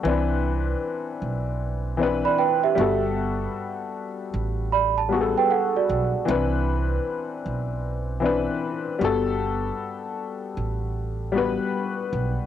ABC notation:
X:1
M:4/4
L:1/16
Q:"Swing 16ths" 1/4=77
K:Clyd
V:1 name="Celesta"
z8 z3 [db] [Bg] [Ge]2 z | z8 [db] a2 [Bg] [Af] [Fd]3 | z16 | z16 |]
V:2 name="Upright piano"
[E,CDB]6 z4 [E,CDB]4 [G,B,FA]2- | [G,B,FA]4 z6 [G,B,F_A=A]4 z2 | [E,CDB]6 z4 [E,CDB]4 [G,B,FA]2- | [G,B,FA]4 z6 [G,B,FB]4 z2 |]
V:3 name="Upright bass" clef=bass
C,,4 z2 B,,,4- B,,, z3 G,,,2- | G,,,2 z4 A,,,4- A,,, z3 B,,, z | C,,4 z2 B,,,4- B,,, z3 G,,,2- | G,,,2 z4 A,,,4- A,,, z3 B,,, z |]